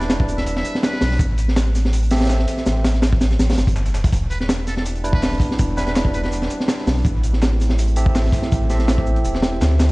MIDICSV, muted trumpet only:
0, 0, Header, 1, 2, 480
1, 0, Start_track
1, 0, Tempo, 365854
1, 1572, Time_signature, 4, 2, 24, 8
1, 13011, End_track
2, 0, Start_track
2, 0, Title_t, "Muted trumpet"
2, 0, Program_c, 0, 59
2, 496, Note_on_c, 0, 76, 87
2, 570, Note_off_c, 0, 76, 0
2, 612, Note_on_c, 0, 76, 75
2, 694, Note_off_c, 0, 76, 0
2, 740, Note_on_c, 0, 76, 94
2, 1025, Note_off_c, 0, 76, 0
2, 1091, Note_on_c, 0, 71, 94
2, 1572, Note_off_c, 0, 71, 0
2, 5651, Note_on_c, 0, 71, 89
2, 5733, Note_off_c, 0, 71, 0
2, 5782, Note_on_c, 0, 71, 78
2, 5853, Note_off_c, 0, 71, 0
2, 6132, Note_on_c, 0, 69, 92
2, 6214, Note_off_c, 0, 69, 0
2, 6260, Note_on_c, 0, 69, 77
2, 6332, Note_off_c, 0, 69, 0
2, 6739, Note_on_c, 0, 71, 97
2, 7024, Note_off_c, 0, 71, 0
2, 7573, Note_on_c, 0, 71, 89
2, 7654, Note_off_c, 0, 71, 0
2, 7702, Note_on_c, 0, 71, 78
2, 7773, Note_off_c, 0, 71, 0
2, 8053, Note_on_c, 0, 71, 90
2, 8134, Note_off_c, 0, 71, 0
2, 8180, Note_on_c, 0, 71, 75
2, 8252, Note_off_c, 0, 71, 0
2, 13011, End_track
0, 0, End_of_file